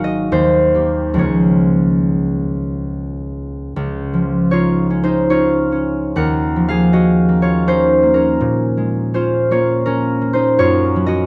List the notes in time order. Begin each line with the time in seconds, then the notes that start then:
Already playing: G#1 G#2 F#3 D#4 F#4 A#4 F5 F#5 A#5
0.04 D#5
0.32 D#2 C5
0.75 A#3 G4
1.14 C#2 F3 A#3
1.18 G#4 C#5
3.76 C#2
4.14 F3
4.51 D#4 F4 C#5
4.90 C#4
5.04 D#4 C5
5.30 D#4 F4 C#5
5.72 C#4
6.16 D#2 A#4 F#5
6.56 F3
6.68 G#4 F5
6.92 C#4 F#4 D#5
7.29 A#3
7.42 F4 C#5
7.67 C#4 D#4 C5
8.03 A#3
8.14 C#4 A#4
8.40 A#2
8.77 G#3
9.14 C#4 F4 C5
9.51 A#3 F4 C#5
9.86 C#4 A#4
10.21 A#3
10.33 D#4 C5
10.59 F#2 F4 C#5
10.96 F#3
11.06 F#4 D#5